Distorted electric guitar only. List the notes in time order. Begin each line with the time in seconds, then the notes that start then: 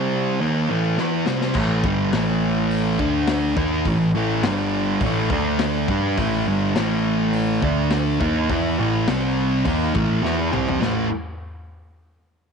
Already playing: C3 G3 C4
0.41 D#3 A#3 D#4
0.70 A2 E3 A3
0.99 E3 B3 E4
1.26 C3 G3 C4
1.56 A2 E3 A3
1.85 G2 D3 G3
2.12 A2 E3 A3
3.00 D3 A3 D4
3.56 D#3 A#3 D#4
3.88 A2 E3
4.15 A2 E3 A3
4.44 G2 D3 G3
5.04 A2 E3 A3
5.31 D3 A3 D4
5.89 G3 D4 G4
6.18 A2 E3 A3
6.48 G2 D3 G3
6.75 A2 E3 A3
7.63 D3 A3 D4
8.20 D#3 A#3 D#4
8.50 E3 B3 E4
8.78 A2 E3 A3
9.09 C3 G3 C4
9.66 D#3 A#3 D#4
9.95 A2 E3 A3
10.23 E3 B3 E4
10.52 C3 G3 C4
10.80 A2 E3 A3